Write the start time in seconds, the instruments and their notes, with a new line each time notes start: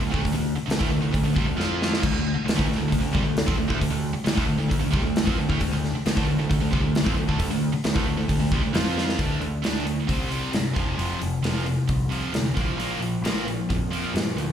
0.02 picked electric bass D2, distorted electric guitar D3 A3
0.11 picked electric bass D2, distorted electric guitar D3 A3, kick
0.23 picked electric bass D2, distorted electric guitar D3 A3, kick, open hi-hat
0.34 picked electric bass D2, distorted electric guitar D3 A3
0.57 muted distorted electric guitar stroke, muted picked electric bass stroke
0.68 picked electric bass D2, distorted electric guitar D3 A3, snare, open hi-hat
0.79 picked electric bass D2, distorted electric guitar D3 A3, kick
0.90 picked electric bass D2, distorted electric guitar D3 A3
1.01 picked electric bass D2, distorted electric guitar D3 A3
1.11 picked electric bass D2, distorted electric guitar D3 A3, kick, open hi-hat
1.23 picked electric bass D2, distorted electric guitar D3 A3
1.34 picked electric bass C2, distorted electric guitar C3 G3, kick
1.46 picked electric bass D2, distorted electric guitar D3 A3
1.56 picked electric bass F2, distorted electric guitar F3 C4 F4, snare
1.82 snare
1.94 snare
2.01 picked electric bass D2, distorted electric guitar D3 A3, kick, crash
2.12 picked electric bass D2, distorted electric guitar D3 A3
2.35 muted distorted electric guitar stroke, muted picked electric bass stroke
2.44 picked electric bass D2, distorted electric guitar D3 A3, open hi-hat
2.49 snare
2.56 picked electric bass D2, distorted electric guitar D3 A3, kick
2.67 picked electric bass D2, distorted electric guitar D3 A3
2.72 snare
2.78 picked electric bass D2, distorted electric guitar D3 A3
2.90 picked electric bass D2, distorted electric guitar D3 A3, kick, open hi-hat
3.01 picked electric bass D2, distorted electric guitar D3 A3
3.12 picked electric bass C2, distorted electric guitar C3 G3, kick
3.23 picked electric bass D2, distorted electric guitar D3 A3
3.37 snare, open hi-hat
3.46 picked electric bass F2, distorted electric guitar F3 C4, kick
3.57 picked electric bass D2, distorted electric guitar D3 A3
3.68 picked electric bass D2, distorted electric guitar D3 A3, kick
3.79 picked electric bass D2, distorted electric guitar D3 A3, kick, open hi-hat
3.91 picked electric bass D2, distorted electric guitar D3 A3
4.13 muted distorted electric guitar stroke, muted picked electric bass stroke
4.25 picked electric bass D2, distorted electric guitar D3 A3, snare, open hi-hat
4.36 picked electric bass D2, distorted electric guitar D3 A3, kick
4.47 picked electric bass D2, distorted electric guitar D3 A3
4.58 picked electric bass D2, distorted electric guitar D3 A3
4.70 picked electric bass D2, distorted electric guitar D3 A3, kick, open hi-hat
4.81 picked electric bass D2, distorted electric guitar D3 A3
4.92 picked electric bass C2, distorted electric guitar C3 G3, kick
5.03 picked electric bass D2, distorted electric guitar D3 A3
5.16 snare, open hi-hat
5.25 picked electric bass F2, distorted electric guitar F3 C4, kick
5.38 picked electric bass D2, distorted electric guitar D3 A3
5.49 picked electric bass D2, distorted electric guitar D3 A3, kick
5.61 picked electric bass D2, distorted electric guitar D3 A3, kick, open hi-hat
5.72 picked electric bass D2, distorted electric guitar D3 A3
5.84 snare
5.94 muted distorted electric guitar stroke, muted picked electric bass stroke
6.06 picked electric bass D2, distorted electric guitar D3 A3, snare, open hi-hat
6.16 picked electric bass D2, distorted electric guitar D3 A3, kick
6.27 picked electric bass D2, distorted electric guitar D3 A3
6.39 picked electric bass D2, distorted electric guitar D3 A3
6.49 picked electric bass D2, distorted electric guitar D3 A3, kick, open hi-hat
6.61 picked electric bass D2, distorted electric guitar D3 A3
6.73 picked electric bass C2, distorted electric guitar C3 G3, kick
6.82 picked electric bass D2, distorted electric guitar D3 A3
6.95 snare, open hi-hat
7.05 picked electric bass F2, distorted electric guitar F3 C4, kick
7.16 picked electric bass D2, distorted electric guitar D3 A3
7.28 picked electric bass D2, distorted electric guitar D3 A3, kick
7.39 picked electric bass D2, distorted electric guitar D3 A3, kick, open hi-hat
7.50 picked electric bass D2, distorted electric guitar D3 A3
7.73 muted distorted electric guitar stroke, muted picked electric bass stroke
7.84 picked electric bass D2, distorted electric guitar D3 A3, snare, open hi-hat
7.95 picked electric bass D2, distorted electric guitar D3 A3, kick
8.06 picked electric bass D2, distorted electric guitar D3 A3
8.17 picked electric bass D2, distorted electric guitar D3 A3
8.28 picked electric bass D2, distorted electric guitar D3 A3, kick, open hi-hat
8.39 picked electric bass D2, distorted electric guitar D3 A3
8.52 picked electric bass C2, distorted electric guitar C3 G3, kick
8.62 picked electric bass D2, distorted electric guitar D3 A3
8.74 picked electric bass F2, distorted electric guitar F3 C4 F4, snare, open hi-hat
8.98 snare
9.09 snare
9.19 picked electric bass D2, distorted electric guitar D3 A3 D4, kick, open hi-hat
9.40 picked electric bass D2, distorted electric guitar D3 A3, open hi-hat
9.64 picked electric bass D2, distorted electric guitar D3 A3 D4, snare, open hi-hat
9.86 distorted electric guitar D3 A3, open hi-hat
10.08 picked electric bass C2, distorted electric guitar C3 G3 C4, kick, open hi-hat
10.31 distorted electric guitar C3 G3 C4, open hi-hat
10.53 picked electric bass G2, distorted electric guitar C3 G3, snare, open hi-hat
10.76 picked electric bass F1, distorted electric guitar F2 C3 F3, kick, open hi-hat
10.97 picked electric bass F1, distorted electric guitar F2 C3 F3, open hi-hat
11.20 picked electric bass F1, distorted electric guitar F2 C3, open hi-hat
11.43 picked electric bass F1, distorted electric guitar F2 C3 F3, snare, open hi-hat
11.66 distorted electric guitar F2 C3, open hi-hat
11.89 picked electric bass C2, distorted electric guitar F2 C3, kick, open hi-hat
12.11 distorted electric guitar F2 C3 F3, open hi-hat
12.33 picked electric bass D2, distorted electric guitar F2 C3, snare, open hi-hat
12.55 picked electric bass A#1, distorted electric guitar A#2 F3 A#3, kick, open hi-hat
12.77 picked electric bass A#1, distorted electric guitar A#2 F3 A#3, open hi-hat
12.99 picked electric bass A#1, distorted electric guitar A#2 F3, open hi-hat
13.22 picked electric bass A#1, distorted electric guitar A#2 F3 A#3, open hi-hat
13.26 snare
13.46 distorted electric guitar A#2 F3, open hi-hat
13.69 picked electric bass F2, distorted electric guitar A#2 F3, kick, open hi-hat
13.91 distorted electric guitar A#2 F3 A#3, open hi-hat
14.14 picked electric bass G2, distorted electric guitar A#2 F3, snare, open hi-hat
14.36 picked electric bass D2, distorted electric guitar A#2 F3, open hi-hat